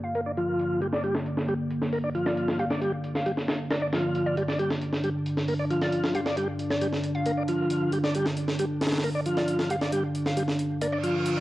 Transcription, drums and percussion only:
0.15 closed hi-hat medium
0.37 closed hi-hat medium
0.59 closed hi-hat medium
0.82 closed hi-hat medium
0.93 snare soft
1.04 closed hi-hat medium
1.15 snare soft
1.26 closed hi-hat medium
1.37 snare soft
1.48 closed hi-hat medium
1.70 closed hi-hat medium
1.82 snare soft
1.93 open hi-hat medium
2.15 closed hi-hat medium
2.26 snare soft
2.37 closed hi-hat medium
2.48 snare soft
2.59 closed hi-hat medium
2.70 snare medium
2.82 closed hi-hat medium
3.04 closed hi-hat medium
3.15 snare soft
3.26 closed hi-hat medium
3.37 snare soft
3.48 snare loud
3.48 closed hi-hat medium
3.70 snare medium
3.70 closed hi-hat medium
3.93 snare medium
3.93 closed hi-hat medium
4.15 closed hi-hat medium
4.37 closed hi-hat medium
4.48 snare soft
4.59 closed hi-hat medium
4.70 snare soft
4.81 closed hi-hat medium
4.93 snare soft
5.04 closed hi-hat medium
5.26 closed hi-hat medium
5.37 snare soft
5.48 open hi-hat medium
5.70 closed hi-hat medium
5.82 snare soft
5.92 closed hi-hat medium
6.04 snare soft
6.15 closed hi-hat medium
6.26 snare soft
6.37 closed hi-hat medium
6.59 closed hi-hat medium
6.70 snare soft
6.81 closed hi-hat medium
6.93 snare soft
7.04 closed hi-hat medium
7.26 closed hi-hat medium
7.48 closed hi-hat medium
7.70 closed hi-hat medium
7.92 closed hi-hat medium
8.04 snare soft
8.15 closed hi-hat medium
8.26 snare soft
8.37 closed hi-hat medium
8.48 snare soft
8.59 closed hi-hat medium
8.81 snare medium
8.81 closed hi-hat medium
8.87 snare medium
8.87 closed hi-hat medium
8.92 snare medium
8.92 closed hi-hat medium
8.98 snare medium
8.98 closed hi-hat medium
9.04 open hi-hat medium
9.26 closed hi-hat medium
9.37 snare soft
9.48 closed hi-hat medium
9.59 snare soft
9.70 closed hi-hat medium
9.81 snare soft
9.92 closed hi-hat medium
10.15 closed hi-hat medium
10.26 snare soft
10.37 closed hi-hat medium
10.48 snare soft
10.59 closed hi-hat medium
10.81 closed hi-hat medium
11.04 closed hi-hat medium
11.26 closed hi-hat medium

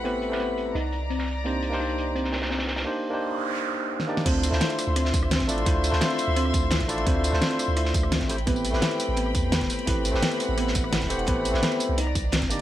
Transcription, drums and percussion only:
0.05 closed hi-hat medium
0.22 closed hi-hat medium
0.32 snare medium
0.40 closed hi-hat medium
0.58 closed hi-hat medium
0.76 closed hi-hat medium
0.92 closed hi-hat medium
1.10 closed hi-hat medium
1.18 snare soft
1.27 closed hi-hat medium
1.46 closed hi-hat medium
1.62 closed hi-hat medium
1.72 snare soft
1.80 open hi-hat medium
1.89 closed hi-hat soft
1.98 closed hi-hat medium
2.16 closed hi-hat medium
2.24 snare soft
2.32 snare loud
2.32 open hi-hat medium
2.42 snare loud
2.42 open hi-hat medium
2.51 snare medium
2.51 open hi-hat medium
2.59 snare medium
2.59 open hi-hat medium
2.67 snare medium
2.67 open hi-hat medium
2.76 snare loud
2.76 open hi-hat medium
4.00 snare medium
4.17 snare medium
4.26 kick loud
4.26 closed hi-hat loud
4.26 closed hi-hat medium
4.26 crash loud
4.43 closed hi-hat medium
4.43 tambourine medium
4.52 snare medium
4.61 snare loud
4.61 closed hi-hat medium
4.61 open hi-hat medium
4.70 closed hi-hat soft
4.79 cross-stick soft
4.79 closed hi-hat medium
4.79 tambourine medium
4.96 cross-stick medium
4.96 closed hi-hat medium
4.96 closed hi-hat loud
5.05 snare medium
5.14 kick loud
5.14 closed hi-hat medium
5.14 tambourine medium
5.23 cross-stick soft
5.31 snare loud
5.31 closed hi-hat medium
5.40 kick medium
5.40 snare soft
5.40 closed hi-hat soft
5.49 closed hi-hat medium
5.49 tambourine medium
5.58 closed hi-hat soft
5.66 kick loud
5.66 closed hi-hat loud
5.84 closed hi-hat medium
5.84 tambourine medium
5.92 snare medium
6.01 snare loud
6.01 closed hi-hat medium
6.10 closed hi-hat soft
6.18 closed hi-hat medium
6.18 tambourine medium
6.36 closed hi-hat medium
6.45 cross-stick soft
6.54 kick loud
6.54 closed hi-hat medium
6.54 tambourine medium
6.71 snare loud
6.71 closed hi-hat medium
6.80 kick medium
6.80 snare soft
6.80 closed hi-hat soft
6.89 closed hi-hat medium
6.89 tambourine medium
6.98 closed hi-hat soft
7.07 kick loud
7.07 closed hi-hat medium
7.24 closed hi-hat medium
7.24 tambourine medium
7.33 snare soft
7.42 snare loud
7.42 closed hi-hat medium
7.42 open hi-hat medium
7.51 closed hi-hat soft
7.59 cross-stick soft
7.59 closed hi-hat medium
7.59 tambourine medium
7.76 cross-stick medium
7.76 closed hi-hat loud
7.76 closed hi-hat medium
7.85 snare medium
7.94 kick loud
7.94 closed hi-hat medium
7.94 tambourine medium
8.03 cross-stick soft
8.12 snare loud
8.12 closed hi-hat medium
8.21 kick medium
8.21 snare soft
8.21 closed hi-hat soft
8.29 closed hi-hat medium
8.29 tambourine medium
8.38 closed hi-hat soft
8.47 kick loud
8.47 closed hi-hat medium
8.56 tambourine soft
8.65 closed hi-hat medium
8.65 tambourine medium
8.73 snare soft
8.82 snare loud
8.82 closed hi-hat medium
8.91 closed hi-hat soft
9.00 closed hi-hat medium
9.00 tambourine medium
9.16 closed hi-hat medium
9.26 cross-stick soft
9.35 kick loud
9.35 closed hi-hat medium
9.35 tambourine medium
9.52 snare loud
9.52 closed hi-hat medium
9.61 kick medium
9.61 snare medium
9.61 closed hi-hat soft
9.70 closed hi-hat medium
9.70 tambourine medium
9.79 closed hi-hat soft
9.87 kick loud
9.87 closed hi-hat medium
9.87 closed hi-hat loud
10.05 closed hi-hat medium
10.05 tambourine medium
10.15 snare soft
10.22 snare loud
10.22 closed hi-hat medium
10.22 open hi-hat medium
10.31 closed hi-hat soft
10.40 cross-stick soft
10.40 closed hi-hat medium
10.40 tambourine medium
10.58 cross-stick soft
10.58 closed hi-hat medium
10.67 snare medium
10.75 kick loud
10.75 closed hi-hat medium
10.75 tambourine medium
10.84 cross-stick soft
10.93 snare loud
10.93 closed hi-hat medium
11.01 kick medium
11.01 snare soft
11.01 closed hi-hat soft
11.10 closed hi-hat medium
11.10 tambourine medium
11.19 closed hi-hat soft
11.27 kick loud
11.27 closed hi-hat medium
11.45 closed hi-hat medium
11.45 tambourine medium
11.54 snare medium
11.63 snare loud
11.63 closed hi-hat medium
11.72 closed hi-hat soft
11.80 closed hi-hat medium
11.80 tambourine medium
11.98 closed hi-hat loud
11.98 closed hi-hat medium
12.07 cross-stick soft
12.15 kick loud
12.15 closed hi-hat medium
12.15 tambourine medium
12.32 snare loud
12.32 closed hi-hat medium
12.42 kick medium
12.42 snare soft
12.42 closed hi-hat soft
12.50 closed hi-hat medium
12.50 tambourine medium

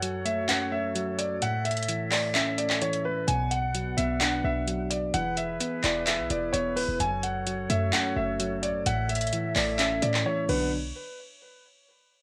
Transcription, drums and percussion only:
0.02 closed hi-hat medium
0.26 closed hi-hat medium
0.49 clap loud
0.49 closed hi-hat medium
0.96 closed hi-hat medium
1.19 closed hi-hat medium
1.42 closed hi-hat medium
1.65 closed hi-hat medium
1.71 closed hi-hat soft
1.77 closed hi-hat soft
1.83 closed hi-hat medium
1.89 closed hi-hat medium
2.12 clap medium
2.12 open hi-hat medium
2.35 clap loud
2.35 closed hi-hat medium
2.58 closed hi-hat medium
2.70 clap medium
2.82 closed hi-hat medium
2.93 closed hi-hat soft
3.28 closed hi-hat medium
3.51 closed hi-hat medium
3.75 closed hi-hat medium
3.98 closed hi-hat medium
4.21 clap loud
4.21 closed hi-hat medium
4.68 closed hi-hat medium
4.91 closed hi-hat medium
5.14 closed hi-hat medium
5.37 closed hi-hat medium
5.60 closed hi-hat medium
5.84 clap medium
5.84 closed hi-hat medium
6.07 clap loud
6.07 closed hi-hat medium
6.30 closed hi-hat medium
6.54 closed hi-hat medium
6.77 open hi-hat medium
7.00 closed hi-hat medium
7.23 closed hi-hat medium
7.47 closed hi-hat medium
7.70 closed hi-hat medium
7.93 clap loud
7.93 closed hi-hat medium
8.40 closed hi-hat medium
8.63 closed hi-hat medium
8.86 closed hi-hat medium
9.09 closed hi-hat medium
9.15 closed hi-hat medium
9.21 closed hi-hat soft
9.27 closed hi-hat medium
9.33 closed hi-hat medium
9.56 clap loud
9.56 open hi-hat medium
9.79 clap loud
9.79 closed hi-hat medium
10.02 closed hi-hat medium
10.14 clap medium
10.49 crash medium

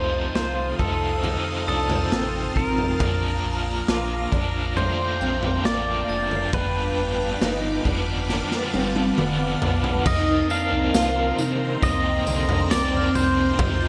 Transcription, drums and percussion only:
0.35 snare medium
0.79 kick medium
0.79 floor tom medium
1.24 floor tom medium
1.90 floor tom medium
2.12 snare loud
2.56 kick medium
2.78 floor tom soft
3.00 kick loud
3.00 floor tom loud
3.88 snare loud
4.32 kick medium
4.32 floor tom medium
4.77 floor tom medium
5.43 floor tom medium
5.65 snare loud
6.31 floor tom medium
6.53 kick loud
6.53 floor tom loud
7.41 snare loud
7.85 kick medium
7.85 floor tom medium
8.30 snare medium
8.51 snare soft
8.74 high tom medium
8.96 high tom medium
9.18 mid tom medium
9.62 floor tom medium
9.84 floor tom medium
10.06 kick loud
10.06 floor tom loud
10.06 crash loud
10.50 tambourine medium
10.94 snare loud
10.94 tambourine medium
11.38 tambourine medium
11.82 kick medium
11.82 floor tom medium
11.82 tambourine medium
12.27 tambourine medium
12.49 floor tom medium
12.71 snare loud
12.71 tambourine loud
12.93 floor tom medium
13.15 floor tom medium
13.15 tambourine medium
13.59 kick loud
13.59 floor tom loud

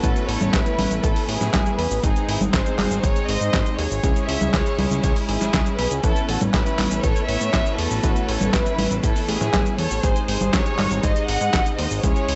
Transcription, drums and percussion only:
0.04 kick loud
0.04 closed hi-hat loud
0.04 cabasa medium
0.16 closed hi-hat soft
0.16 cabasa soft
0.29 open hi-hat loud
0.41 closed hi-hat soft
0.41 high conga medium
0.41 cabasa medium
0.54 kick loud
0.54 snare loud
0.54 clap medium
0.54 closed hi-hat loud
0.54 cabasa soft
0.66 closed hi-hat soft
0.66 cabasa soft
0.79 open hi-hat loud
0.79 high conga medium
0.91 closed hi-hat soft
0.91 cabasa medium
1.04 kick loud
1.04 closed hi-hat medium
1.04 cabasa soft
1.16 open hi-hat medium
1.16 cabasa soft
1.29 open hi-hat loud
1.41 snare soft
1.41 closed hi-hat soft
1.41 cabasa medium
1.54 kick loud
1.54 snare loud
1.54 clap medium
1.54 closed hi-hat medium
1.54 high conga medium
1.54 cabasa soft
1.66 closed hi-hat soft
1.66 cabasa soft
1.79 open hi-hat loud
1.91 cabasa medium
2.04 kick loud
2.04 closed hi-hat medium
2.04 cabasa medium
2.16 closed hi-hat soft
2.16 cabasa soft
2.29 open hi-hat loud
2.41 closed hi-hat soft
2.41 high conga medium
2.41 cabasa medium
2.54 kick loud
2.54 snare loud
2.54 clap loud
2.54 closed hi-hat medium
2.54 cabasa soft
2.66 closed hi-hat soft
2.66 cabasa soft
2.79 clap medium
2.79 open hi-hat loud
2.79 high conga medium
2.91 closed hi-hat soft
2.91 cabasa medium
3.04 kick loud
3.04 closed hi-hat medium
3.04 cabasa soft
3.16 closed hi-hat soft
3.16 cabasa soft
3.29 open hi-hat loud
3.41 closed hi-hat soft
3.41 cabasa medium
3.54 kick loud
3.54 snare loud
3.54 clap medium
3.54 closed hi-hat medium
3.54 cabasa soft
3.66 closed hi-hat soft
3.66 cabasa soft
3.79 open hi-hat loud
3.91 cabasa medium
4.04 kick loud
4.04 closed hi-hat medium
4.04 cabasa medium
4.16 closed hi-hat soft
4.16 cabasa soft
4.29 open hi-hat loud
4.41 closed hi-hat soft
4.41 high conga medium
4.41 cabasa medium
4.54 kick loud
4.54 snare loud
4.54 clap medium
4.54 closed hi-hat medium
4.54 cabasa medium
4.66 closed hi-hat soft
4.66 cabasa soft
4.79 open hi-hat loud
4.79 high conga medium
4.91 closed hi-hat soft
4.91 cabasa medium
5.04 kick loud
5.04 closed hi-hat medium
5.04 cabasa medium
5.16 open hi-hat medium
5.16 cabasa soft
5.29 open hi-hat loud
5.41 snare soft
5.41 cabasa medium
5.54 kick loud
5.54 snare loud
5.54 clap medium
5.54 closed hi-hat medium
5.54 high conga medium
5.54 cabasa soft
5.66 closed hi-hat soft
5.66 cabasa soft
5.79 open hi-hat loud
5.91 closed hi-hat soft
5.91 cabasa medium
6.04 kick loud
6.04 closed hi-hat medium
6.04 cabasa medium
6.16 closed hi-hat soft
6.16 cabasa soft
6.29 open hi-hat loud
6.41 closed hi-hat soft
6.41 high conga medium
6.41 cabasa medium
6.54 kick loud
6.54 snare loud
6.54 clap medium
6.54 closed hi-hat medium
6.54 cabasa medium
6.66 closed hi-hat soft
6.66 cabasa soft
6.79 clap medium
6.79 open hi-hat loud
6.79 high conga medium
6.91 closed hi-hat soft
6.91 cabasa medium
7.04 kick loud
7.04 closed hi-hat medium
7.04 cabasa medium
7.16 closed hi-hat soft
7.16 cabasa soft
7.29 open hi-hat loud
7.41 closed hi-hat soft
7.41 cabasa medium
7.54 kick loud
7.54 snare loud
7.54 clap medium
7.54 closed hi-hat medium
7.54 cabasa medium
7.66 closed hi-hat soft
7.66 cabasa soft
7.78 open hi-hat loud
7.91 cabasa medium
8.04 kick loud
8.04 closed hi-hat loud
8.04 cabasa medium
8.16 closed hi-hat soft
8.16 cabasa soft
8.29 open hi-hat loud
8.41 closed hi-hat soft
8.41 high conga medium
8.41 cabasa medium
8.54 kick loud
8.54 snare loud
8.54 clap medium
8.54 closed hi-hat loud
8.54 cabasa medium
8.66 closed hi-hat soft
8.66 cabasa soft
8.79 open hi-hat loud
8.79 high conga medium
8.91 closed hi-hat soft
8.91 cabasa medium
9.04 kick loud
9.04 closed hi-hat medium
9.04 cabasa medium
9.16 open hi-hat medium
9.16 cabasa soft
9.29 open hi-hat loud
9.41 snare soft
9.41 cabasa medium
9.53 kick loud
9.53 snare loud
9.53 clap medium
9.53 closed hi-hat medium
9.53 high conga medium
9.53 cabasa medium
9.66 closed hi-hat soft
9.66 cabasa soft
9.78 open hi-hat loud
9.91 cabasa medium
10.04 kick loud
10.04 closed hi-hat loud
10.04 cabasa medium
10.16 closed hi-hat soft
10.16 cabasa soft
10.28 open hi-hat loud
10.41 closed hi-hat soft
10.41 high conga medium
10.41 cabasa medium
10.53 kick loud
10.53 snare loud
10.53 clap medium
10.53 closed hi-hat loud
10.53 cabasa medium
10.66 closed hi-hat soft
10.66 cabasa soft
10.78 clap medium
10.78 open hi-hat loud
10.78 high conga medium
10.91 closed hi-hat soft
10.91 cabasa medium
11.03 kick loud
11.03 closed hi-hat medium
11.03 cabasa medium
11.16 closed hi-hat soft
11.16 cabasa soft
11.28 open hi-hat loud
11.41 closed hi-hat soft
11.41 cabasa medium
11.53 kick loud
11.53 snare loud
11.53 clap medium
11.53 closed hi-hat loud
11.53 cabasa soft
11.66 closed hi-hat soft
11.66 cabasa soft
11.79 open hi-hat loud
11.91 cabasa medium
12.04 kick loud
12.04 closed hi-hat loud
12.04 cabasa medium
12.16 closed hi-hat soft
12.16 cabasa soft
12.29 open hi-hat loud

